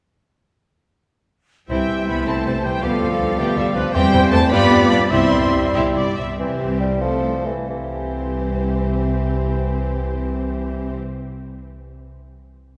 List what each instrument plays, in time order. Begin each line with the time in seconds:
1.69 double bass section C2, bassoon E3, cello section G3, french horn section G3 E4, violin section C4 E4 G5, clarinet G4, oboe C5, viola section E5, flute section G5
1.89 double bass section C2, violin section G3 C4
2.07 double bass section C2, violin section G3 B5, cello section B3, clarinet B4, flute section B5
2.26 double bass section C2, cello section A3, violin section C4 E4 A5, clarinet A4, viola section C5, flute section A5
2.45 double bass section C2, violin section G3 C4
2.63 double bass section C2, violin section G3 G5, cello section G3, clarinet G4, flute section G5
2.82 double bass section D2, cello section F3, bassoon F3, french horn section G3 B3, violin section B3 G4 F5, clarinet F4, viola section A4, oboe D5, flute section F5
3.01 double bass section D2, violin section G3 F4
3.20 double bass section D2, violin section G3 D4
3.38 double bass section D2, bassoon A3, violin section B3 G4 G5, viola section G4
3.49 violin section F5
3.56 double bass section D2, violin section G3 F4 E5, bassoon G3, viola section A4
3.66 violin section F5
3.75 double bass section D2, bassoon F3, violin section G3 D4, viola section B4
3.93 double bass section E2, bassoon E3, cello section G3, french horn section G3 C4, violin section C4 G4 G5, clarinet G4, viola section C5, oboe C5, flute section G5
4.13 double bass section E2, violin section G3 E4
4.31 double bass section E2, violin section G3 C4 A5, cello section A3, clarinet A4, flute section A5
4.50 double bass section G2, french horn section G3 F4, bassoon G3, cello section B3, violin section F4 G4 B5, clarinet B4, oboe D5, viola section D5, flute section B5
4.70 double bass section G2, violin section D4 F4
4.90 double bass section G2, violin section B3 D4 B5, cello section B3, clarinet B4, flute section B5
5.10 double bass section C2, french horn section G3 E4, bassoon G3, cello section C4, violin section E4 G4 C6, clarinet C5, oboe E5, viola section E5, flute section C6
5.31 double bass section C2, violin section C4 E4
5.53 double bass section C2, violin section G3 C4
5.74 double bass section C2, violin section E4 G4, viola section E5
5.95 double bass section C2, violin section C4 E4, viola section D5
6.17 double bass section C2, violin section G3 C4, viola section E5
6.38 double bass section C2, cello section C2, bassoon E3, french horn section C4 G4, viola section C4, violin section G4 C5
6.80 bassoon G3
7.01 bassoon F3, viola section A3, french horn section A4, violin section A4 C5
7.46 bassoon E3
7.69 double bass section C2, cello section C2, bassoon E3, french horn section C4 G4, viola section C4, violin section G4 C5